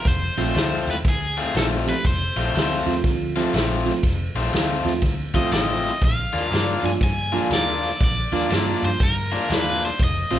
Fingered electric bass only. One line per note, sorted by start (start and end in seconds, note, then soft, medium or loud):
0.05 0.28 F1 medium
0.37 0.50 A#1 medium
0.55 0.78 D2 medium
0.87 1.00 D#2 medium
1.05 1.41 D2 medium
1.54 1.91 A#1 medium
2.05 2.28 F1 medium
2.36 2.49 A#1 medium
2.54 2.77 D2 medium
2.86 2.99 D#2 medium
3.04 3.40 D2 medium
3.54 3.90 A#1 medium
4.03 4.27 F1 medium
4.35 4.48 A#1 medium
4.53 4.76 D2 medium
4.85 4.98 D#2 medium
5.02 5.38 D2 medium
5.52 5.88 A1 medium
6.01 6.25 A#1 medium
6.34 6.47 D#2 medium
6.51 6.75 G2 medium
6.83 6.96 G2 medium
7.01 7.37 G2 medium
7.50 7.87 D#2 medium
8.01 8.24 A#1 medium
8.32 8.45 D#2 medium
8.50 8.74 G2 medium
8.82 8.95 G2 medium
9.00 9.36 G2 medium
9.50 9.86 D#2 medium
9.99 10.22 F1 medium
10.32 10.39 A#1 medium